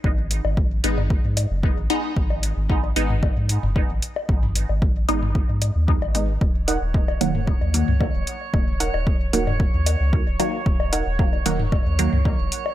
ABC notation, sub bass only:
X:1
M:4/4
L:1/16
Q:1/4=113
K:Ebm
V:1 name="Sub bass" clef=bass
A,,,3 A,,,3 A,,,3 A,,2 G,,,2 A,,, z2 | A,,,3 A,,,3 A,,,3 A,,2 G,,,2 A,,, z2 | A,,,3 A,,,3 A,,,3 A,,2 E,,2 A,,,3 | E,,,3 E,,,3 E,,,3 E,,2 D,,2 E,,, z2 |
E,,,3 E,,,3 E,,,3 E,,2 D,,2 E,,, z2 | E,,,3 E,,,3 E,,,3 E,,2 D,,2 E,,, z2 |]